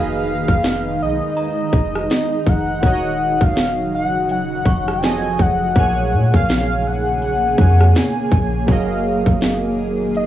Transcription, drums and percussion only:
0.48 kick
0.63 snare, closed hi-hat
1.37 closed hi-hat
1.73 kick, closed hi-hat
1.96 cross-stick
2.10 snare, closed hi-hat
2.46 kick, closed hi-hat
2.83 kick, closed hi-hat
3.41 kick
3.56 snare, closed hi-hat
4.29 closed hi-hat
4.66 kick, closed hi-hat
4.88 cross-stick
5.03 snare, closed hi-hat
5.39 kick, closed hi-hat
5.75 kick, closed hi-hat
6.34 kick
6.49 snare, closed hi-hat
7.22 closed hi-hat
7.58 kick, closed hi-hat
7.81 cross-stick
7.95 snare, closed hi-hat
8.32 kick, closed hi-hat
8.68 kick, closed hi-hat
9.26 kick
9.41 snare, closed hi-hat
10.15 closed hi-hat

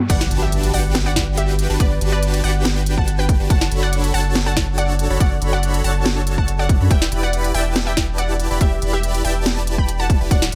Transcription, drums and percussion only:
0.10 kick, closed hi-hat, crash
0.21 snare
0.31 closed hi-hat
0.52 closed hi-hat
0.63 closed hi-hat
0.74 open hi-hat
0.95 snare, closed hi-hat
1.16 kick, snare, closed hi-hat
1.37 closed hi-hat
1.59 closed hi-hat
1.80 kick, closed hi-hat
2.01 closed hi-hat
2.23 closed hi-hat
2.34 closed hi-hat
2.44 open hi-hat
2.65 snare, closed hi-hat
2.86 closed hi-hat
2.97 kick
3.08 closed hi-hat
3.29 kick, closed hi-hat
3.50 kick, closed hi-hat
3.61 snare
3.72 closed hi-hat
3.93 closed hi-hat
4.04 closed hi-hat
4.14 open hi-hat
4.35 snare, closed hi-hat
4.57 kick, snare, closed hi-hat
4.78 closed hi-hat
4.99 closed hi-hat
5.20 kick, closed hi-hat
5.42 closed hi-hat
5.63 closed hi-hat
5.74 closed hi-hat
5.84 open hi-hat
6.06 snare, closed hi-hat
6.27 closed hi-hat
6.38 kick
6.48 closed hi-hat
6.69 kick, closed hi-hat
6.91 kick, closed hi-hat
7.02 snare
7.12 closed hi-hat
7.33 closed hi-hat
7.44 closed hi-hat
7.54 open hi-hat
7.76 snare, closed hi-hat
7.97 kick, snare, closed hi-hat
8.18 closed hi-hat
8.40 closed hi-hat
8.61 kick, closed hi-hat
8.82 closed hi-hat
9.03 closed hi-hat
9.15 closed hi-hat
9.25 open hi-hat
9.46 snare, closed hi-hat
9.67 closed hi-hat
9.78 kick
9.89 closed hi-hat
10.10 kick, closed hi-hat
10.31 kick, closed hi-hat
10.42 snare

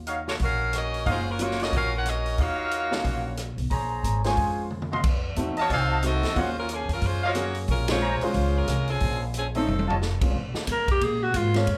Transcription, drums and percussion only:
0.07 closed hi-hat
0.28 snare
0.39 kick, open hi-hat
0.73 cross-stick, closed hi-hat
0.94 open hi-hat
1.06 kick, open hi-hat
1.39 closed hi-hat
1.51 snare
1.60 snare, open hi-hat
1.73 kick, open hi-hat
2.06 cross-stick, closed hi-hat
2.26 open hi-hat
2.38 kick, open hi-hat
2.71 closed hi-hat
2.92 snare
3.04 kick, open hi-hat
3.37 cross-stick, closed hi-hat
3.58 open hi-hat
3.71 kick, open hi-hat
4.04 closed hi-hat
4.24 snare, open hi-hat
4.37 kick, open hi-hat
4.71 mid tom
4.82 mid tom
4.93 mid tom
5.04 kick, crash
5.36 closed hi-hat
5.57 open hi-hat
5.70 kick, open hi-hat
6.03 cross-stick, closed hi-hat
6.23 snare, open hi-hat
6.36 kick, open hi-hat
6.69 closed hi-hat
6.89 open hi-hat
7.02 kick, open hi-hat
7.35 cross-stick, closed hi-hat
7.55 open hi-hat
7.68 kick, open hi-hat
7.88 snare, ride
8.21 open hi-hat
8.34 kick, open hi-hat
8.68 cross-stick, closed hi-hat
8.87 open hi-hat
9.00 kick, open hi-hat
9.34 closed hi-hat
9.55 open hi-hat
9.68 high tom
9.79 high tom
9.90 floor tom
10.02 snare
10.21 kick, crash
10.34 kick
10.54 snare
10.67 kick, hi-hat pedal, ride
10.88 kick, ride
11.01 kick, ride
11.34 kick, hi-hat pedal, ride
11.54 snare, ride
11.67 kick, ride

